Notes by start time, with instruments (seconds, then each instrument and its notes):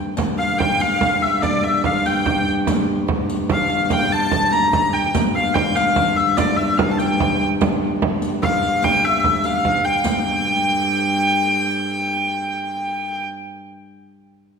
Already playing: viola da gamba G2
0.17 viola da gamba G2, riq, frame drum
0.38 hurdy-gurdy F5
0.58 hurdy-gurdy G5, frame drum
0.80 hurdy-gurdy F5, riq, frame drum
1.01 riq, frame drum
1.22 hurdy-gurdy E5, riq
1.42 hurdy-gurdy D5, riq, frame drum
1.64 hurdy-gurdy E5
1.84 hurdy-gurdy F5, frame drum
2.05 hurdy-gurdy G5, riq, frame drum
2.26 riq, frame drum
2.47 riq
2.67 riq, frame drum
3.08 frame drum
3.29 riq, frame drum
3.49 hurdy-gurdy F5, riq, frame drum
3.70 riq
3.90 hurdy-gurdy G5, riq, frame drum
4.13 hurdy-gurdy A5
4.32 frame drum
4.52 hurdy-gurdy A#5, riq
4.73 riq, frame drum
4.93 hurdy-gurdy G5, frame drum
5.15 viola da gamba G2, riq, frame drum
5.35 hurdy-gurdy F5
5.54 hurdy-gurdy G5, frame drum
5.76 hurdy-gurdy F5, riq, frame drum
5.96 riq, frame drum
6.16 hurdy-gurdy E5, riq
6.37 hurdy-gurdy D5, riq, frame drum
6.57 hurdy-gurdy E5
6.78 hurdy-gurdy F5, frame drum
6.91 hurdy-gurdy A5
6.99 hurdy-gurdy G5, riq, frame drum
7.20 riq, frame drum
7.41 riq
7.61 riq, frame drum
8.02 frame drum
8.22 riq, frame drum
8.42 hurdy-gurdy F5, riq, frame drum
8.62 riq
8.82 hurdy-gurdy G5, riq, frame drum
9.04 hurdy-gurdy E5, riq
9.24 frame drum
9.44 hurdy-gurdy F5, riq
9.65 frame drum
9.85 hurdy-gurdy G5
10.04 viola da gamba G2, hurdy-gurdy G5, riq, frame drum